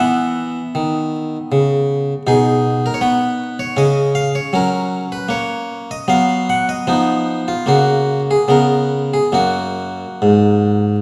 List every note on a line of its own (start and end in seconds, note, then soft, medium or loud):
0.00 0.60 E3 medium
0.00 2.22 B3 soft
0.00 1.76 E5 medium
0.75 1.36 D#3 soft
1.52 2.12 C#3 medium
2.27 2.87 B2 medium
2.27 3.74 D#4 soft
2.27 2.84 G#4 medium
2.86 2.97 A#4 medium
2.94 3.02 C#5 medium
3.01 3.62 B3 soft
3.01 3.59 B4 medium
3.59 3.78 C#5 medium
3.77 4.37 C#3 medium
3.77 4.48 C#4 soft
3.77 4.10 D#5 medium
4.15 4.34 F5 medium
4.35 4.53 C#5 medium
4.53 5.14 F#3 medium
4.53 6.05 C#4 soft
4.53 5.03 A#4 medium
5.12 5.30 B4 medium
5.29 5.92 A#3 medium
5.29 5.89 C#5 medium
5.91 6.10 D#5 medium
6.08 6.72 F#3 medium
6.08 6.84 B3 soft
6.08 6.49 F5 medium
6.50 6.69 F#5 loud
6.69 6.89 D#5 medium
6.87 7.52 F3 medium
6.87 7.64 B3 soft
6.87 7.39 D#4 medium
7.48 7.68 F4 medium
7.66 8.33 C#3 medium
7.66 8.45 A#3 soft
7.66 8.20 F#4 medium
8.31 8.51 G#4 medium
8.48 9.17 C#3 soft
8.48 9.30 B3 soft
8.48 9.13 A#4 medium
9.14 9.35 G#4 medium
9.32 10.04 F#2 medium
9.32 11.02 A#3 soft
9.32 10.89 F#4 medium
10.22 10.97 G#2 soft